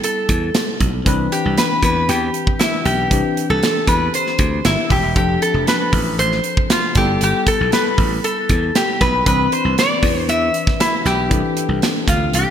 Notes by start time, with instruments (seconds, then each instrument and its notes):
Already playing: tine electric piano G3 B3 E4 A4
0.04 resonator guitar played with a steel bar A4, closed hi-hat
0.29 slap bass E2, kick, closed hi-hat
0.55 snare, closed hi-hat
0.80 slap bass B1, kick, closed hi-hat
1.05 slap bass C2, tine electric piano E3 C4 D4 B4, kick, closed hi-hat
1.32 resonator guitar played with a steel bar G4, closed hi-hat
1.45 slap bass C2
1.57 resonator guitar played with a steel bar B4, snare, closed hi-hat
1.82 slap bass E2, resonator guitar played with a steel bar B4, kick, closed hi-hat
2.09 slap bass E2, resonator guitar played with a steel bar G4, closed hi-hat
2.34 closed hi-hat
2.47 kick
2.59 resonator guitar played with a steel bar E4, snare, closed hi-hat
2.85 slap bass B1, resonator guitar played with a steel bar G4, closed hi-hat
3.10 slap bass C2, tine electric piano E3 C4 D4 G4, kick, closed hi-hat
3.37 closed hi-hat
3.50 slap bass C2, resonator guitar played with a steel bar A4
3.63 snare, closed hi-hat
3.87 slap bass E2, resonator guitar played with a steel bar B4, kick, closed hi-hat
4.14 resonator guitar played with a steel bar C5, closed hi-hat
4.27 snare
4.39 slap bass D2, kick, closed hi-hat
4.65 slap bass G1, resonator guitar played with a steel bar E4, snare, closed hi-hat
4.90 slap bass D#1, resonator guitar played with a steel bar G4, kick, open hi-hat
5.03 slap bass E1
5.15 slap bass F1, tine electric piano F3 C4 D4 A4, resonator guitar played with a steel bar G4, kick, closed hi-hat
5.42 resonator guitar played with a steel bar A4, closed hi-hat
5.54 slap bass F1
5.67 resonator guitar played with a steel bar B4, snare, closed hi-hat
5.93 slap bass A1, kick, open hi-hat
6.18 slap bass A1, resonator guitar played with a steel bar C5, closed hi-hat
6.32 snare
6.44 closed hi-hat
6.57 kick
6.70 resonator guitar played with a steel bar F4, snare, closed hi-hat
6.94 slap bass G1, tine electric piano G3 B3 E4 A4, resonator guitar played with a steel bar G4, kick, snare, closed hi-hat
7.21 slap bass G1, resonator guitar played with a steel bar G4, closed hi-hat
7.47 resonator guitar played with a steel bar A4, kick, closed hi-hat
7.61 slap bass B1
7.72 resonator guitar played with a steel bar B4, snare, closed hi-hat
7.98 slap bass A1, kick, open hi-hat
8.24 resonator guitar played with a steel bar A4, closed hi-hat
8.49 slap bass E2, kick, closed hi-hat
8.75 resonator guitar played with a steel bar G4, snare, closed hi-hat
9.01 slap bass B1, resonator guitar played with a steel bar B4, kick, snare, closed hi-hat
9.25 slap bass C2, tine electric piano E3 C4 D4 B4, resonator guitar played with a steel bar B4, kick, closed hi-hat
9.52 resonator guitar played with a steel bar C5, closed hi-hat
9.65 slap bass C2
9.78 resonator guitar played with a steel bar D5, snare, closed hi-hat
10.03 slap bass E2, kick, open hi-hat
10.28 slap bass E2, resonator guitar played with a steel bar E5, closed hi-hat
10.54 closed hi-hat
10.67 kick, snare
10.80 resonator guitar played with a steel bar E4, snare, closed hi-hat
11.05 slap bass B1, resonator guitar played with a steel bar G4, snare, closed hi-hat
11.29 slap bass C2, tine electric piano E3 C4 D4 A4, kick, closed hi-hat
11.57 closed hi-hat
11.69 slap bass C2
11.82 snare, closed hi-hat
12.07 slap bass D2, resonator guitar played with a steel bar F4, kick, closed hi-hat
12.33 slap bass C2, resonator guitar played with a steel bar G4, closed hi-hat